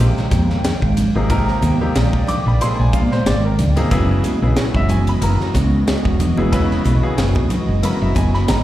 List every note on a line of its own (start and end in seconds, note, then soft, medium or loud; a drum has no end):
0.00 0.14 A#1 loud
0.00 0.98 C3 medium
0.00 3.87 D#3 medium
0.00 0.98 F3 medium
0.00 8.63 G#3 medium
0.00 0.98 A#3 medium
0.00 3.87 A#3 medium
0.00 1.27 C4 medium
0.00 0.98 D#4 medium
0.00 0.98 G4 medium
0.00 3.87 G5 medium
0.17 muted fretless electric bass stroke soft
0.17 snare soft
0.31 0.59 F2 medium
0.31 kick medium
0.31 snare soft
0.31 hi-hat pedal medium
0.31 ride medium
0.31 high conga medium
0.50 snare soft
0.64 snare loud
0.64 hi-hat pedal medium
0.64 ride medium
0.82 1.10 G#1 medium
0.82 kick medium
0.97 hi-hat pedal medium
0.97 ride medium
0.97 low conga medium
1.15 1.54 G#1 medium
1.15 1.28 C3 medium
1.15 1.28 F3 medium
1.15 1.28 A#3 medium
1.15 1.28 D#4 medium
1.15 1.28 G#4 medium
1.30 1.73 C3 loud
1.30 1.73 F3 loud
1.30 1.73 A#3 loud
1.30 1.73 D#4 loud
1.30 1.73 A#4 loud
1.30 3.89 D5 medium
1.30 kick loud
1.30 hi-hat pedal medium
1.30 ride medium
1.48 snare soft
1.62 1.77 D#2 medium
1.62 hi-hat pedal medium
1.62 ride medium
1.62 high conga medium
1.81 2.51 C3 medium
1.81 2.51 F3 medium
1.81 2.51 A#3 medium
1.81 2.51 D#4 medium
1.81 2.51 G4 medium
1.81 muted fretless electric bass stroke soft
1.95 2.10 A#1 medium
1.95 snare loud
1.95 hi-hat pedal medium
1.95 ride medium
2.13 kick medium
2.27 2.45 D6 loud
2.27 muted fretless electric bass stroke soft
2.27 hi-hat pedal medium
2.27 ride medium
2.27 low conga medium
2.46 2.58 A#1 medium
2.46 2.61 B5 medium
2.61 3.60 C3 medium
2.61 3.60 F3 medium
2.61 3.60 A#3 medium
2.61 3.60 D#4 medium
2.61 3.60 G#4 medium
2.61 2.78 C6 loud
2.61 hi-hat pedal medium
2.61 ride medium
2.79 3.06 A#1 medium
2.79 2.93 G#5 medium
2.93 3.11 F5 medium
2.93 kick medium
2.93 hi-hat pedal medium
2.93 ride medium
2.93 high conga medium
3.12 3.26 C5 medium
3.12 snare soft
3.26 3.60 G#1 loud
3.26 3.44 D5 loud
3.26 snare loud
3.26 hi-hat pedal medium
3.26 ride medium
3.45 3.53 A#4 medium
3.58 3.73 D2 medium
3.58 hi-hat pedal medium
3.58 ride medium
3.58 low conga medium
3.76 3.89 C3 medium
3.76 3.89 F3 medium
3.76 3.89 A#3 medium
3.76 3.89 D#4 medium
3.76 3.89 G#4 medium
3.76 ride medium
3.76 high conga medium
3.91 4.18 F#1 medium
3.91 4.35 C#3 loud
3.91 8.63 E3 medium
3.91 4.35 F#3 loud
3.91 4.35 B3 loud
3.91 8.63 B3 medium
3.91 4.35 E4 loud
3.91 8.63 F#4 loud
3.91 4.35 G#4 loud
3.91 8.63 D#5 medium
3.91 kick loud
3.91 hi-hat pedal medium
3.91 ride medium
4.24 hi-hat pedal medium
4.24 ride medium
4.24 high conga medium
4.42 4.54 A#1 medium
4.42 5.12 C#3 medium
4.42 5.12 F#3 medium
4.42 5.12 B3 medium
4.42 5.12 E4 medium
4.42 5.13 G#4 medium
4.56 muted fretless electric bass stroke soft
4.56 snare loud
4.56 hi-hat pedal medium
4.56 ride medium
4.75 5.14 F#1 medium
4.75 4.90 E5 medium
4.75 kick medium
4.89 5.07 G#5 medium
4.89 hi-hat pedal medium
4.89 ride medium
4.89 low conga medium
5.07 5.23 B5 medium
5.07 ride medium
5.21 5.37 F#1 loud
5.21 6.21 C#3 medium
5.21 6.21 F#3 medium
5.21 6.21 B3 medium
5.21 6.21 E4 medium
5.21 6.21 A#4 medium
5.21 6.17 A#5 medium
5.21 hi-hat pedal medium
5.21 ride medium
5.41 snare soft
5.54 5.82 C#2 medium
5.54 kick medium
5.54 snare soft
5.54 hi-hat pedal medium
5.54 ride medium
5.54 high conga medium
5.88 snare loud
5.88 hi-hat pedal medium
5.88 ride medium
6.05 6.32 E1 medium
6.05 kick medium
6.20 hi-hat pedal medium
6.20 ride medium
6.20 low conga medium
6.37 6.77 E1 medium
6.37 6.51 C#3 medium
6.37 6.51 F#3 medium
6.37 6.51 B3 medium
6.37 6.51 E4 medium
6.37 6.51 G#4 medium
6.37 high conga medium
6.52 6.96 C#3 loud
6.52 6.96 F#3 loud
6.52 6.96 B3 loud
6.52 6.96 E4 loud
6.52 6.96 B4 loud
6.52 kick loud
6.52 hi-hat pedal medium
6.52 ride medium
6.71 snare soft
6.85 7.00 B1 medium
6.85 hi-hat pedal medium
6.85 ride medium
6.85 high conga medium
7.03 7.73 C#3 medium
7.03 7.73 F#3 medium
7.03 7.73 B3 medium
7.03 7.73 E4 medium
7.03 7.73 G#4 medium
7.03 muted fretless electric bass stroke soft
7.18 7.33 F#1 medium
7.18 snare loud
7.18 hi-hat pedal medium
7.18 ride medium
7.35 kick medium
7.35 high conga medium
7.50 muted fretless electric bass stroke soft
7.50 hi-hat pedal medium
7.50 ride medium
7.50 low conga medium
7.68 7.81 F#1 medium
7.83 8.63 C#3 medium
7.83 8.63 F#3 medium
7.83 8.63 B3 medium
7.83 8.63 E4 medium
7.83 8.63 A#4 medium
7.83 8.01 B5 medium
7.83 hi-hat pedal medium
7.83 ride medium
7.83 low conga medium
8.02 8.14 F#1 medium
8.02 8.16 E5 medium
8.15 8.45 F#1 medium
8.15 8.34 G#5 medium
8.15 kick medium
8.15 hi-hat pedal medium
8.15 ride medium
8.15 high conga medium
8.34 8.49 B5 loud
8.34 snare soft
8.48 8.63 G#1 medium
8.48 8.63 A#5 medium
8.48 snare loud
8.48 hi-hat pedal medium
8.48 ride medium